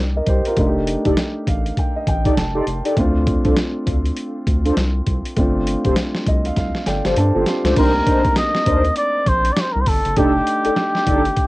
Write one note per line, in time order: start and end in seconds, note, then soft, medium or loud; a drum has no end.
0.00 0.21 C2 medium
0.00 0.52 A#3 medium
0.00 0.53 D4 medium
0.00 0.53 D#4 medium
0.00 0.29 G4 medium
0.16 0.27 A#4 soft
0.16 0.27 D#5 medium
0.26 0.42 C2 medium
0.26 0.45 G4 medium
0.26 0.45 C5 medium
0.26 kick medium
0.26 closed hi-hat medium
0.45 0.58 F4 medium
0.45 0.74 A#4 medium
0.45 closed hi-hat medium
0.56 0.97 F1 loud
0.56 2.93 A3 medium
0.56 2.93 D4 medium
0.56 2.94 D#4 medium
0.56 0.66 F4 medium
0.56 kick loud
0.56 closed hi-hat medium
0.66 2.98 G4 medium
0.87 closed hi-hat medium
1.05 1.15 F1 medium
1.05 1.15 D#4 medium
1.05 1.15 G4 medium
1.05 1.15 A4 medium
1.05 1.15 D5 medium
1.05 kick medium
1.05 closed hi-hat soft
1.17 snare loud
1.17 closed hi-hat medium
1.47 1.72 A1 medium
1.47 1.75 F5 medium
1.47 kick medium
1.47 closed hi-hat medium
1.66 closed hi-hat soft
1.77 1.95 G5 medium
1.77 kick medium
1.77 closed hi-hat medium
1.96 2.07 D#5 medium
2.07 2.32 A1 medium
2.07 2.36 G5 medium
2.07 kick medium
2.07 closed hi-hat medium
2.25 2.35 D#4 medium
2.25 2.35 G4 medium
2.25 2.35 A4 medium
2.25 2.35 D5 medium
2.25 kick medium
2.25 closed hi-hat medium
2.37 2.61 F1 loud
2.37 2.55 A5 medium
2.37 snare loud
2.37 closed hi-hat medium
2.54 2.65 D#4 medium
2.54 2.65 G4 medium
2.54 2.65 A4 medium
2.54 2.65 D5 medium
2.54 2.95 C6 medium
2.67 2.82 F1 medium
2.67 closed hi-hat medium
2.85 2.95 D#4 medium
2.85 2.95 G4 medium
2.85 2.95 A4 medium
2.85 2.95 D5 medium
2.85 closed hi-hat medium
2.97 3.37 D2 loud
2.97 5.33 A3 medium
2.97 5.33 C4 medium
2.97 5.34 D4 medium
2.97 5.34 F4 medium
2.97 kick loud
2.97 closed hi-hat medium
3.27 kick loud
3.27 closed hi-hat medium
3.45 3.55 C2 medium
3.45 3.55 D4 medium
3.45 3.55 F4 medium
3.45 3.55 A4 medium
3.45 3.55 C5 medium
3.45 kick medium
3.45 closed hi-hat soft
3.57 snare loud
3.57 closed hi-hat medium
3.87 4.11 D2 medium
3.87 kick medium
3.87 closed hi-hat medium
4.05 closed hi-hat medium
4.17 closed hi-hat medium
4.47 4.71 D2 medium
4.47 kick medium
4.47 closed hi-hat medium
4.65 4.75 D4 medium
4.65 4.75 F4 medium
4.65 4.75 A4 medium
4.65 4.75 C5 medium
4.65 closed hi-hat medium
4.77 5.02 C2 loud
4.77 snare loud
4.77 closed hi-hat medium
5.07 5.22 C2 medium
5.07 kick medium
5.07 closed hi-hat medium
5.25 closed hi-hat medium
5.36 5.77 G1 loud
5.36 6.84 A3 medium
5.36 6.84 C4 medium
5.36 6.85 D4 medium
5.36 6.85 F4 medium
5.36 kick loud
5.36 closed hi-hat medium
5.67 closed hi-hat medium
5.85 5.95 F1 medium
5.85 5.95 F4 medium
5.85 5.95 G4 medium
5.85 5.95 A4 medium
5.85 5.95 C5 medium
5.85 kick medium
5.85 closed hi-hat soft
5.96 snare loud
5.96 closed hi-hat medium
6.15 snare medium
6.27 6.51 C2 medium
6.27 6.45 D#5 medium
6.27 kick medium
6.27 closed hi-hat medium
6.45 6.56 F5 medium
6.45 closed hi-hat soft
6.57 6.72 C2 loud
6.57 6.85 F5 medium
6.57 kick medium
6.57 snare soft
6.57 closed hi-hat medium
6.75 snare soft
6.86 7.02 G1 medium
6.86 7.05 A4 medium
6.86 7.04 D5 medium
6.86 7.15 G5 medium
6.86 snare medium
6.86 closed hi-hat medium
7.04 7.15 G1 medium
7.04 7.15 F4 medium
7.04 7.15 G4 medium
7.04 7.17 G4 medium
7.04 7.15 A4 medium
7.04 7.15 C5 medium
7.04 7.17 C5 medium
7.04 snare medium
7.04 closed hi-hat medium
7.16 7.32 G2 loud
7.16 7.35 D4 medium
7.16 7.35 A4 medium
7.16 7.45 A5 medium
7.16 closed hi-hat medium
7.34 7.45 G1 loud
7.34 7.47 D4 medium
7.34 7.44 F4 medium
7.34 7.45 G4 medium
7.34 7.47 G4 medium
7.34 7.45 A4 medium
7.34 7.45 C5 medium
7.46 7.65 C4 medium
7.46 7.65 F4 medium
7.46 7.75 C6 medium
7.46 snare medium
7.46 closed hi-hat medium
7.64 7.74 C#2 medium
7.64 7.94 A3 medium
7.64 7.94 D4 medium
7.64 7.75 F4 medium
7.64 7.75 G4 medium
7.64 7.75 A4 medium
7.64 7.75 C5 medium
7.64 snare medium
7.64 closed hi-hat medium
7.76 8.01 C2 loud
7.76 10.13 A#3 medium
7.76 10.13 C4 medium
7.76 7.92 D4 medium
7.76 7.92 D#4 medium
7.76 10.13 D#4 medium
7.76 10.14 G4 medium
7.76 7.92 A#4 medium
7.76 8.34 A#4 loud
7.76 7.92 C5 loud
7.76 kick loud
7.76 closed hi-hat medium
7.76 crash loud
8.06 8.22 D4 medium
8.06 8.22 D#4 medium
8.06 8.22 A#4 medium
8.06 8.22 C5 medium
8.06 kick loud
8.06 closed hi-hat medium
8.25 8.30 D#2 soft
8.25 kick medium
8.25 closed hi-hat medium
8.36 8.93 D#5 loud
8.36 snare loud
8.36 closed hi-hat medium
8.55 snare medium
8.66 8.91 D#2 medium
8.66 8.82 D4 medium
8.66 8.82 D#4 medium
8.66 8.82 A#4 medium
8.66 8.82 C5 medium
8.66 kick loud
8.66 closed hi-hat medium
8.85 closed hi-hat soft
8.96 9.30 D5 loud
8.96 closed hi-hat medium
9.26 9.51 A#1 loud
9.26 9.54 C5 loud
9.26 kick medium
9.26 closed hi-hat medium
9.45 closed hi-hat medium
9.53 9.62 D5 medium
9.53 snare loud
9.53 closed hi-hat medium
9.61 9.74 C5 medium
9.72 9.85 C2 loud
9.72 9.83 A#4 medium
9.81 9.90 C5 medium
9.86 10.02 G1 medium
9.86 10.20 A4 medium
9.86 kick medium
9.86 open hi-hat medium
10.05 10.15 F#1 medium
10.05 closed hi-hat medium
10.16 10.41 F1 loud
10.16 11.47 A3 medium
10.16 10.32 D4 medium
10.16 11.47 D4 medium
10.16 10.32 D#4 medium
10.16 11.47 D#4 medium
10.16 10.32 G4 medium
10.16 11.47 G4 loud
10.16 11.47 G4 medium
10.16 10.32 A4 loud
10.16 kick loud
10.16 closed hi-hat medium
10.47 closed hi-hat medium
10.64 10.70 G1 soft
10.64 10.75 D4 medium
10.64 10.75 D#4 medium
10.64 10.75 G4 medium
10.64 10.75 A4 medium
10.64 closed hi-hat soft
10.76 snare loud
10.76 closed hi-hat medium
10.95 snare medium
11.06 11.32 G1 medium
11.06 11.22 D4 medium
11.06 11.22 D#4 medium
11.06 11.22 G4 medium
11.06 11.22 A4 medium
11.06 kick medium
11.06 closed hi-hat medium
11.25 closed hi-hat medium
11.37 kick medium
11.37 closed hi-hat medium